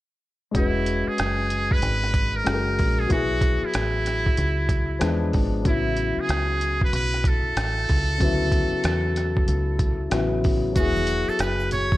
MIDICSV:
0, 0, Header, 1, 6, 480
1, 0, Start_track
1, 0, Tempo, 638298
1, 414, Time_signature, 4, 2, 24, 8
1, 9003, End_track
2, 0, Start_track
2, 0, Title_t, "Muted trumpet"
2, 0, Program_c, 0, 59
2, 426, Note_on_c, 0, 64, 88
2, 812, Note_on_c, 0, 68, 92
2, 823, Note_off_c, 0, 64, 0
2, 1293, Note_on_c, 0, 71, 100
2, 1304, Note_off_c, 0, 68, 0
2, 1777, Note_on_c, 0, 70, 90
2, 1788, Note_off_c, 0, 71, 0
2, 2256, Note_on_c, 0, 68, 80
2, 2267, Note_off_c, 0, 70, 0
2, 2339, Note_off_c, 0, 68, 0
2, 2349, Note_on_c, 0, 66, 92
2, 2745, Note_on_c, 0, 64, 85
2, 2757, Note_off_c, 0, 66, 0
2, 4024, Note_off_c, 0, 64, 0
2, 4270, Note_on_c, 0, 64, 86
2, 4663, Note_on_c, 0, 68, 90
2, 4674, Note_off_c, 0, 64, 0
2, 5134, Note_off_c, 0, 68, 0
2, 5145, Note_on_c, 0, 71, 93
2, 5218, Note_off_c, 0, 71, 0
2, 5229, Note_on_c, 0, 71, 102
2, 5474, Note_on_c, 0, 69, 97
2, 5485, Note_off_c, 0, 71, 0
2, 7624, Note_off_c, 0, 69, 0
2, 8097, Note_on_c, 0, 66, 96
2, 8489, Note_on_c, 0, 69, 87
2, 8500, Note_off_c, 0, 66, 0
2, 8576, Note_on_c, 0, 71, 99
2, 8587, Note_off_c, 0, 69, 0
2, 8813, Note_off_c, 0, 71, 0
2, 8817, Note_on_c, 0, 73, 92
2, 9003, Note_off_c, 0, 73, 0
2, 9003, End_track
3, 0, Start_track
3, 0, Title_t, "Grand piano"
3, 0, Program_c, 1, 0
3, 386, Note_on_c, 1, 56, 59
3, 399, Note_on_c, 1, 61, 55
3, 416, Note_on_c, 1, 66, 51
3, 435, Note_on_c, 1, 71, 63
3, 1811, Note_off_c, 1, 56, 0
3, 1818, Note_off_c, 1, 61, 0
3, 1826, Note_off_c, 1, 66, 0
3, 1835, Note_on_c, 1, 56, 54
3, 1836, Note_off_c, 1, 71, 0
3, 1845, Note_on_c, 1, 61, 48
3, 1852, Note_on_c, 1, 66, 45
3, 1861, Note_on_c, 1, 69, 45
3, 1910, Note_on_c, 1, 70, 60
3, 1919, Note_off_c, 1, 69, 0
3, 2307, Note_on_c, 1, 54, 59
3, 2322, Note_on_c, 1, 59, 52
3, 2325, Note_off_c, 1, 56, 0
3, 2329, Note_off_c, 1, 61, 0
3, 2333, Note_off_c, 1, 66, 0
3, 2337, Note_on_c, 1, 64, 55
3, 2354, Note_on_c, 1, 68, 67
3, 2362, Note_off_c, 1, 70, 0
3, 3731, Note_off_c, 1, 54, 0
3, 3739, Note_off_c, 1, 59, 0
3, 3746, Note_off_c, 1, 64, 0
3, 3753, Note_on_c, 1, 53, 65
3, 3755, Note_off_c, 1, 68, 0
3, 3763, Note_on_c, 1, 56, 59
3, 3769, Note_on_c, 1, 59, 58
3, 3778, Note_on_c, 1, 62, 71
3, 4224, Note_on_c, 1, 49, 57
3, 4240, Note_on_c, 1, 54, 52
3, 4243, Note_off_c, 1, 53, 0
3, 4243, Note_off_c, 1, 59, 0
3, 4248, Note_off_c, 1, 56, 0
3, 4254, Note_on_c, 1, 59, 55
3, 4256, Note_off_c, 1, 62, 0
3, 4273, Note_on_c, 1, 64, 66
3, 6129, Note_off_c, 1, 49, 0
3, 6137, Note_off_c, 1, 54, 0
3, 6144, Note_off_c, 1, 59, 0
3, 6150, Note_on_c, 1, 49, 70
3, 6153, Note_off_c, 1, 64, 0
3, 6166, Note_on_c, 1, 54, 68
3, 6180, Note_on_c, 1, 59, 68
3, 6198, Note_on_c, 1, 64, 75
3, 7573, Note_off_c, 1, 49, 0
3, 7581, Note_off_c, 1, 54, 0
3, 7588, Note_off_c, 1, 59, 0
3, 7595, Note_on_c, 1, 49, 64
3, 7597, Note_off_c, 1, 64, 0
3, 7605, Note_on_c, 1, 54, 58
3, 7613, Note_on_c, 1, 59, 63
3, 7621, Note_on_c, 1, 64, 65
3, 8056, Note_off_c, 1, 54, 0
3, 8067, Note_on_c, 1, 54, 61
3, 8074, Note_off_c, 1, 59, 0
3, 8084, Note_off_c, 1, 49, 0
3, 8085, Note_on_c, 1, 59, 55
3, 8088, Note_off_c, 1, 64, 0
3, 8099, Note_on_c, 1, 64, 56
3, 8117, Note_on_c, 1, 68, 69
3, 9003, Note_off_c, 1, 54, 0
3, 9003, Note_off_c, 1, 59, 0
3, 9003, Note_off_c, 1, 64, 0
3, 9003, Note_off_c, 1, 68, 0
3, 9003, End_track
4, 0, Start_track
4, 0, Title_t, "Fingered electric bass"
4, 0, Program_c, 2, 33
4, 411, Note_on_c, 2, 28, 84
4, 784, Note_off_c, 2, 28, 0
4, 897, Note_on_c, 2, 30, 76
4, 1351, Note_off_c, 2, 30, 0
4, 1372, Note_on_c, 2, 32, 91
4, 1829, Note_off_c, 2, 32, 0
4, 1856, Note_on_c, 2, 30, 96
4, 2083, Note_off_c, 2, 30, 0
4, 2102, Note_on_c, 2, 34, 84
4, 2326, Note_off_c, 2, 34, 0
4, 2334, Note_on_c, 2, 35, 87
4, 2706, Note_off_c, 2, 35, 0
4, 2817, Note_on_c, 2, 33, 74
4, 3271, Note_off_c, 2, 33, 0
4, 3295, Note_on_c, 2, 37, 87
4, 3750, Note_off_c, 2, 37, 0
4, 3772, Note_on_c, 2, 40, 91
4, 4001, Note_off_c, 2, 40, 0
4, 4019, Note_on_c, 2, 32, 84
4, 4244, Note_off_c, 2, 32, 0
4, 4251, Note_on_c, 2, 33, 88
4, 4624, Note_off_c, 2, 33, 0
4, 4731, Note_on_c, 2, 37, 84
4, 5188, Note_off_c, 2, 37, 0
4, 5211, Note_on_c, 2, 35, 86
4, 5668, Note_off_c, 2, 35, 0
4, 5690, Note_on_c, 2, 33, 88
4, 5920, Note_off_c, 2, 33, 0
4, 5937, Note_on_c, 2, 37, 83
4, 6164, Note_off_c, 2, 37, 0
4, 6171, Note_on_c, 2, 38, 86
4, 6545, Note_off_c, 2, 38, 0
4, 6650, Note_on_c, 2, 40, 75
4, 7108, Note_off_c, 2, 40, 0
4, 7130, Note_on_c, 2, 37, 74
4, 7588, Note_off_c, 2, 37, 0
4, 7610, Note_on_c, 2, 33, 95
4, 8068, Note_off_c, 2, 33, 0
4, 8090, Note_on_c, 2, 28, 87
4, 8464, Note_off_c, 2, 28, 0
4, 8570, Note_on_c, 2, 30, 88
4, 9003, Note_off_c, 2, 30, 0
4, 9003, End_track
5, 0, Start_track
5, 0, Title_t, "Muted fingered electric bass strokes"
5, 808, Note_on_c, 9, 29, 41
5, 883, Note_off_c, 9, 29, 0
5, 2727, Note_on_c, 9, 29, 40
5, 2802, Note_off_c, 9, 29, 0
5, 4642, Note_on_c, 9, 29, 42
5, 4717, Note_off_c, 9, 29, 0
5, 6564, Note_on_c, 9, 29, 42
5, 6639, Note_off_c, 9, 29, 0
5, 8485, Note_on_c, 9, 29, 43
5, 8560, Note_off_c, 9, 29, 0
5, 9003, End_track
6, 0, Start_track
6, 0, Title_t, "Drums"
6, 412, Note_on_c, 9, 36, 82
6, 412, Note_on_c, 9, 42, 65
6, 487, Note_off_c, 9, 36, 0
6, 487, Note_off_c, 9, 42, 0
6, 649, Note_on_c, 9, 42, 57
6, 724, Note_off_c, 9, 42, 0
6, 889, Note_on_c, 9, 42, 84
6, 900, Note_on_c, 9, 37, 98
6, 964, Note_off_c, 9, 42, 0
6, 975, Note_off_c, 9, 37, 0
6, 1130, Note_on_c, 9, 42, 58
6, 1206, Note_off_c, 9, 42, 0
6, 1287, Note_on_c, 9, 36, 77
6, 1362, Note_off_c, 9, 36, 0
6, 1371, Note_on_c, 9, 42, 80
6, 1446, Note_off_c, 9, 42, 0
6, 1533, Note_on_c, 9, 37, 30
6, 1608, Note_off_c, 9, 37, 0
6, 1608, Note_on_c, 9, 36, 71
6, 1609, Note_on_c, 9, 42, 56
6, 1683, Note_off_c, 9, 36, 0
6, 1684, Note_off_c, 9, 42, 0
6, 1853, Note_on_c, 9, 42, 88
6, 1857, Note_on_c, 9, 37, 105
6, 1929, Note_off_c, 9, 42, 0
6, 1932, Note_off_c, 9, 37, 0
6, 2095, Note_on_c, 9, 46, 47
6, 2102, Note_on_c, 9, 36, 80
6, 2170, Note_off_c, 9, 46, 0
6, 2177, Note_off_c, 9, 36, 0
6, 2332, Note_on_c, 9, 42, 70
6, 2333, Note_on_c, 9, 36, 95
6, 2407, Note_off_c, 9, 42, 0
6, 2408, Note_off_c, 9, 36, 0
6, 2567, Note_on_c, 9, 36, 71
6, 2569, Note_on_c, 9, 42, 55
6, 2642, Note_off_c, 9, 36, 0
6, 2644, Note_off_c, 9, 42, 0
6, 2810, Note_on_c, 9, 42, 89
6, 2820, Note_on_c, 9, 37, 103
6, 2885, Note_off_c, 9, 42, 0
6, 2896, Note_off_c, 9, 37, 0
6, 3053, Note_on_c, 9, 42, 62
6, 3062, Note_on_c, 9, 37, 30
6, 3128, Note_off_c, 9, 42, 0
6, 3137, Note_off_c, 9, 37, 0
6, 3206, Note_on_c, 9, 36, 69
6, 3281, Note_off_c, 9, 36, 0
6, 3289, Note_on_c, 9, 42, 74
6, 3365, Note_off_c, 9, 42, 0
6, 3526, Note_on_c, 9, 36, 74
6, 3528, Note_on_c, 9, 42, 52
6, 3601, Note_off_c, 9, 36, 0
6, 3604, Note_off_c, 9, 42, 0
6, 3767, Note_on_c, 9, 42, 89
6, 3771, Note_on_c, 9, 37, 92
6, 3842, Note_off_c, 9, 42, 0
6, 3846, Note_off_c, 9, 37, 0
6, 4011, Note_on_c, 9, 46, 43
6, 4017, Note_on_c, 9, 36, 79
6, 4086, Note_off_c, 9, 46, 0
6, 4093, Note_off_c, 9, 36, 0
6, 4250, Note_on_c, 9, 36, 92
6, 4250, Note_on_c, 9, 42, 64
6, 4325, Note_off_c, 9, 36, 0
6, 4325, Note_off_c, 9, 42, 0
6, 4486, Note_on_c, 9, 42, 58
6, 4562, Note_off_c, 9, 42, 0
6, 4730, Note_on_c, 9, 42, 85
6, 4741, Note_on_c, 9, 37, 88
6, 4805, Note_off_c, 9, 42, 0
6, 4816, Note_off_c, 9, 37, 0
6, 4972, Note_on_c, 9, 42, 66
6, 5047, Note_off_c, 9, 42, 0
6, 5124, Note_on_c, 9, 36, 78
6, 5200, Note_off_c, 9, 36, 0
6, 5213, Note_on_c, 9, 42, 79
6, 5288, Note_off_c, 9, 42, 0
6, 5371, Note_on_c, 9, 37, 30
6, 5446, Note_off_c, 9, 37, 0
6, 5446, Note_on_c, 9, 36, 80
6, 5452, Note_on_c, 9, 42, 60
6, 5521, Note_off_c, 9, 36, 0
6, 5528, Note_off_c, 9, 42, 0
6, 5691, Note_on_c, 9, 42, 88
6, 5695, Note_on_c, 9, 37, 110
6, 5766, Note_off_c, 9, 42, 0
6, 5770, Note_off_c, 9, 37, 0
6, 5931, Note_on_c, 9, 46, 47
6, 5937, Note_on_c, 9, 36, 71
6, 6007, Note_off_c, 9, 46, 0
6, 6012, Note_off_c, 9, 36, 0
6, 6170, Note_on_c, 9, 36, 95
6, 6172, Note_on_c, 9, 42, 62
6, 6245, Note_off_c, 9, 36, 0
6, 6247, Note_off_c, 9, 42, 0
6, 6404, Note_on_c, 9, 36, 76
6, 6408, Note_on_c, 9, 42, 60
6, 6479, Note_off_c, 9, 36, 0
6, 6483, Note_off_c, 9, 42, 0
6, 6646, Note_on_c, 9, 42, 85
6, 6656, Note_on_c, 9, 37, 96
6, 6721, Note_off_c, 9, 42, 0
6, 6732, Note_off_c, 9, 37, 0
6, 6890, Note_on_c, 9, 42, 60
6, 6899, Note_on_c, 9, 37, 28
6, 6965, Note_off_c, 9, 42, 0
6, 6974, Note_off_c, 9, 37, 0
6, 7044, Note_on_c, 9, 36, 68
6, 7119, Note_off_c, 9, 36, 0
6, 7128, Note_on_c, 9, 42, 73
6, 7203, Note_off_c, 9, 42, 0
6, 7363, Note_on_c, 9, 36, 76
6, 7364, Note_on_c, 9, 42, 58
6, 7439, Note_off_c, 9, 36, 0
6, 7439, Note_off_c, 9, 42, 0
6, 7606, Note_on_c, 9, 42, 93
6, 7609, Note_on_c, 9, 37, 100
6, 7681, Note_off_c, 9, 42, 0
6, 7684, Note_off_c, 9, 37, 0
6, 7852, Note_on_c, 9, 46, 45
6, 7857, Note_on_c, 9, 36, 80
6, 7927, Note_off_c, 9, 46, 0
6, 7932, Note_off_c, 9, 36, 0
6, 8089, Note_on_c, 9, 42, 74
6, 8090, Note_on_c, 9, 36, 95
6, 8092, Note_on_c, 9, 82, 67
6, 8164, Note_off_c, 9, 42, 0
6, 8165, Note_off_c, 9, 36, 0
6, 8168, Note_off_c, 9, 82, 0
6, 8245, Note_on_c, 9, 63, 69
6, 8245, Note_on_c, 9, 82, 48
6, 8320, Note_off_c, 9, 63, 0
6, 8320, Note_off_c, 9, 82, 0
6, 8324, Note_on_c, 9, 42, 64
6, 8335, Note_on_c, 9, 63, 40
6, 8335, Note_on_c, 9, 82, 41
6, 8399, Note_off_c, 9, 42, 0
6, 8410, Note_off_c, 9, 63, 0
6, 8410, Note_off_c, 9, 82, 0
6, 8486, Note_on_c, 9, 82, 45
6, 8561, Note_off_c, 9, 82, 0
6, 8565, Note_on_c, 9, 42, 87
6, 8576, Note_on_c, 9, 37, 110
6, 8576, Note_on_c, 9, 82, 57
6, 8640, Note_off_c, 9, 42, 0
6, 8651, Note_off_c, 9, 37, 0
6, 8651, Note_off_c, 9, 82, 0
6, 8719, Note_on_c, 9, 82, 46
6, 8794, Note_off_c, 9, 82, 0
6, 8806, Note_on_c, 9, 42, 59
6, 8812, Note_on_c, 9, 64, 69
6, 8812, Note_on_c, 9, 82, 48
6, 8882, Note_off_c, 9, 42, 0
6, 8887, Note_off_c, 9, 64, 0
6, 8887, Note_off_c, 9, 82, 0
6, 8964, Note_on_c, 9, 36, 75
6, 8965, Note_on_c, 9, 63, 56
6, 8965, Note_on_c, 9, 82, 38
6, 9003, Note_off_c, 9, 36, 0
6, 9003, Note_off_c, 9, 63, 0
6, 9003, Note_off_c, 9, 82, 0
6, 9003, End_track
0, 0, End_of_file